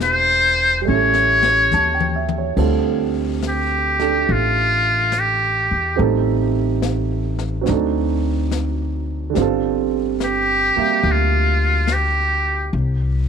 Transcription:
Already playing: E1 E3 A#3 D4 G4 C5
0.00 C5, snare, hi-hat pedal
0.82 G3 A3
0.88 A1 C#4 E4 C#5
0.94 A4
1.14 snare
1.43 snare
1.72 D#2 A5, hi-hat pedal, mid tom
1.95 G5
2.00 mid tom
2.16 E5
2.29 mid tom
2.38 C#5
2.56 D2 D3 G3 C4 F4 A4, brush sweep, kick, crash
3.42 snare, hi-hat pedal
3.49 G4
3.99 A3 D4 G4 A4, snare
4.27 A1, brush sweep
4.32 F4
5.12 snare, hi-hat pedal
5.19 G4
5.71 E2
5.96 A1 G3 A3 C4 D#4, brush sweep
6.00 A4
6.82 snare, hi-hat pedal
7.39 snare
7.61 F#3 C4
7.66 D2 D4 D#4, brush sweep, snare
7.72 A4
8.51 snare, hi-hat pedal
9.30 D3 G3
9.35 G1 C4 F4, brush sweep, snare
9.41 A4
10.20 snare, hi-hat pedal
10.25 G4
10.76 G3 A#3 G4 E5, muted upright bass stroke
11.03 D2, brush sweep
11.12 F4
11.87 snare, hi-hat pedal
11.93 G4
12.72 C2, brush sweep

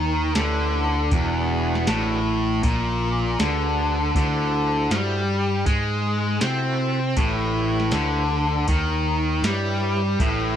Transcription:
Already playing: D#2 D#3
0.35 D2 D3 C#4 E4 G4 B4, snare, open hi-hat
1.12 E1 E2 D4 F#4 G#4 B4, kick, open hi-hat
1.75 snare
1.87 A1 A2, snare, open hi-hat
2.63 A#1 A#2, kick, open hi-hat
3.39 D2 D3 D4 F#4 G#4 B4, snare, open hi-hat
4.15 D2 D3 E4 F#4 A4 C5, kick, open hi-hat
4.91 G2 G3, snare, open hi-hat
5.66 G#2 G#3, kick, open hi-hat
6.41 C3 C4 E4 F#4 A4 C5, snare, open hi-hat
7.17 A1 A2 E4 G4 B4 C#5, kick, open hi-hat
7.80 snare
7.91 D2 D3, snare, open hi-hat
8.68 D#2 D#3, kick, open hi-hat
9.42 G2 G3 E4 G4 B4 C#5, snare, open hi-hat
10.19 A1 A2 E4 G4 B4 E5, kick, open hi-hat

